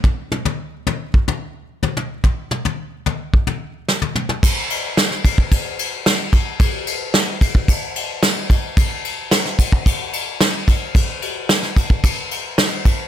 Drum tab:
CC |----------------|----------------|x-x-x-x-x-x-x-x-|x-x-x-x-x-x-x-x-|
SD |----------------|------------o---|----oo------o---|----o-------o---|
T2 |--o-----------o-|--o-----------oo|----------------|----------------|
FT |o--o--o--o---o--|o--o--o--o---o--|----------------|----------------|
BD |o-------o-------|o-------o-------|o-----ooo-----o-|o-----ooo-----o-|

CC |x-x-x-x-x-x-x-x-|x-x-x-x-x-x-x-x-|
SD |----oo------o---|----oo------o---|
T2 |----------------|----------------|
FT |----------------|----------------|
BD |o-----ooo-----o-|o-----ooo-----o-|